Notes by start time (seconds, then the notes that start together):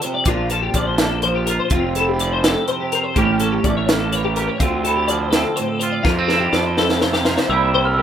Already playing: F3 C4 E4
0.02 C3 C5, closed hi-hat
0.14 D5
0.25 A#1 A#2 D4 F4, kick, closed hi-hat
0.50 F4 A4, closed hi-hat
0.62 G4
0.74 A#1 F3 D5, kick, closed hi-hat
0.87 C5
0.98 D4 A4, snare, closed hi-hat
1.22 F3 C5, closed hi-hat
1.35 G4
1.47 F4 A#4, closed hi-hat
1.59 C5
1.70 F1 F2 F4, kick, closed hi-hat
1.74 C4
1.95 E4 A4, closed hi-hat
2.08 G4
2.19 F3 D5, closed hi-hat
2.32 C5
2.44 C4 A4, snare, closed hi-hat
2.68 C3 C5, closed hi-hat
2.80 G4
2.92 A#4 C5, closed hi-hat
3.03 C5
3.16 A1 A2 A3 A#3 C#4 G4, kick, closed hi-hat
3.40 C#4 A4, closed hi-hat
3.52 G4
3.64 A1 A3 D5, kick, closed hi-hat
3.77 C#5
3.88 A#3 A4, snare, closed hi-hat
4.12 E3 C#5, closed hi-hat
4.24 G4
4.36 G4 A#4, closed hi-hat
4.48 C#5
4.60 D2 D3 C4 F4, kick, closed hi-hat
4.84 E4 A4, closed hi-hat
4.96 G4
5.08 F3 D5, closed hi-hat
5.19 C5
5.31 A4, snare, closed hi-hat
5.35 C4
5.56 A2 C5, closed hi-hat
5.67 A4
5.80 F4 C5, closed hi-hat
5.92 D5
6.03 F2 A#3 F4, kick, snare
6.18 C4
6.28 E4 A4, snare
6.40 G4
6.53 F2 F3 D5, snare
6.65 C5
6.77 C4 A4, snare
6.89 snare
7.01 C3 C5, snare
7.13 G4, snare
7.25 A#4 C5, snare
7.37 C5, snare
7.49 C2 C3 G3 A#3 E4 G4 E5 E6
7.74 C5
7.85 A#4 F6
7.94 G3 E6
7.98 G4 A4